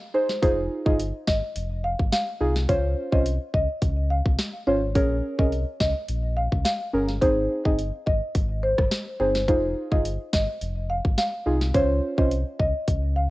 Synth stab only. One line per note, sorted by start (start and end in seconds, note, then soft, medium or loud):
0.14 0.28 D#4 medium
0.14 0.28 G#4 medium
0.14 0.28 C5 medium
0.42 0.82 D#4 loud
0.42 0.82 F4 medium
0.42 0.82 G#4 loud
0.86 0.98 D#4 medium
0.86 0.98 F4 medium
0.86 0.98 G#4 medium
2.40 2.54 D#4 medium
2.40 2.54 F4 medium
2.40 2.54 G#4 medium
2.69 3.09 C#4 medium
2.69 3.09 F4 medium
2.69 3.09 C5 loud
3.12 3.24 C#4 medium
3.12 3.24 F4 medium
3.12 3.25 C5 medium
4.67 4.81 C#4 medium
4.67 4.81 F4 medium
4.67 4.81 C5 medium
4.95 5.35 C#4 loud
4.95 5.35 G#4 medium
4.95 5.35 A#4 loud
5.38 5.51 C#4 medium
5.38 5.51 G#4 medium
5.38 5.51 A#4 medium
6.93 7.07 C#4 medium
6.93 7.07 G#4 medium
6.93 7.07 A#4 medium
7.22 7.61 C4 loud
7.22 7.62 D#4 medium
7.22 7.62 G#4 loud
7.65 7.77 C4 medium
7.65 7.77 D#4 medium
7.65 7.77 G#4 medium
9.20 9.33 C4 medium
9.20 9.34 D#4 medium
9.20 9.34 G#4 medium
9.48 9.88 D#4 loud
9.48 9.88 F4 medium
9.48 9.88 G#4 loud
9.91 10.04 D#4 medium
9.91 10.04 F4 medium
9.91 10.04 G#4 medium
11.46 11.60 D#4 medium
11.46 11.60 F4 medium
11.46 11.60 G#4 medium
11.74 12.14 C#4 medium
11.74 12.14 F4 medium
11.74 12.15 C5 loud
12.18 12.30 C#4 medium
12.18 12.30 F4 medium
12.18 12.30 C5 medium